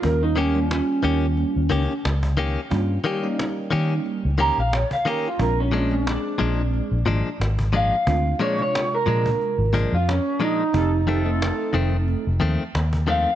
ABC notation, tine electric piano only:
X:1
M:4/4
L:1/16
Q:"Swing 16ths" 1/4=90
K:Eb
V:1 name="Tine electric piano"
[G,B,_DF]2 [G,B,DG] [G,B,DF]6 z6 z | [G,B,_DF]2 [G,B,DG] [G,B,DE]6 z6 z | [A,CDF]2 [A,CDF] [A,CDA]6 z6 z | [A,CDF]2 [A,CDA] [C,A,DF]6 z6 z |
[=A,CEG]2 [A,CEG] [A,CE=A]6 z6 z |]